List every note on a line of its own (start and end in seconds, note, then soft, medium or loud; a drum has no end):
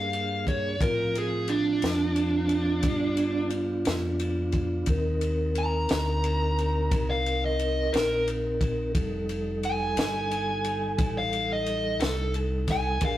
0.00 0.78 G2 medium
0.00 0.77 A#3 medium
0.00 0.77 D4 medium
0.00 0.77 G#4 medium
0.00 0.44 F5 medium
0.13 ride medium
0.47 0.81 C#5 medium
0.47 kick medium
0.47 ride medium
0.81 1.80 A2 medium
0.81 2.84 F3 medium
0.81 2.83 C4 medium
0.81 2.83 F4 medium
0.81 1.14 A#4 medium
0.81 kick loud
0.81 ride medium
1.15 1.49 G#4 medium
1.15 ride medium
1.48 3.49 D4 medium
1.48 ride medium
1.82 2.82 F2 medium
1.82 snare medium
1.82 ride medium
2.16 ride medium
2.49 ride medium
2.83 3.83 G2 medium
2.83 4.87 B3 medium
2.83 4.87 F4 medium
2.83 kick loud
2.83 ride medium
2.87 4.87 D4 medium
3.17 ride medium
3.50 ride medium
3.85 4.85 F2 medium
3.85 snare loud
3.85 ride medium
4.20 ride medium
4.52 kick medium
4.52 ride medium
4.86 5.87 D#2 medium
4.86 8.92 D#4 medium
4.86 8.92 A#4 medium
4.86 kick medium
4.86 ride medium
4.90 8.93 C4 medium
5.21 ride medium
5.55 7.06 A#5 medium
5.55 ride medium
5.89 6.89 D2 medium
5.89 snare loud
5.89 ride medium
6.24 ride medium
6.58 ride medium
6.91 7.91 C2 medium
6.91 kick loud
6.91 ride medium
7.10 7.43 F5 medium
7.26 ride medium
7.46 7.94 D#5 medium
7.59 ride medium
7.93 8.92 A#1 medium
7.93 8.26 A#4 loud
7.93 snare loud
7.93 ride medium
8.28 ride medium
8.61 kick medium
8.61 ride medium
8.94 9.94 F1 medium
8.94 12.99 G3 medium
8.94 12.98 D#4 medium
8.94 12.99 A4 medium
8.94 kick loud
8.94 ride medium
9.29 ride medium
9.63 11.13 G#5 medium
9.63 ride medium
9.97 10.96 G1 loud
9.97 snare loud
9.97 ride medium
10.31 ride medium
10.64 ride medium
10.98 11.98 A1 medium
10.98 kick loud
10.98 ride medium
11.18 11.50 F5 medium
11.33 ride medium
11.53 12.01 D#5 medium
11.66 ride medium
12.00 13.00 C2 medium
12.00 12.34 A4 medium
12.00 snare loud
12.00 ride medium
12.34 ride medium
12.68 13.03 G#5 loud
12.68 kick medium
12.68 snare soft
12.68 ride medium
13.01 13.18 A#1 medium
13.01 13.18 D4 medium
13.01 13.18 G#4 medium
13.01 13.18 A#4 medium
13.01 kick loud
13.01 ride medium
13.05 13.18 F5 loud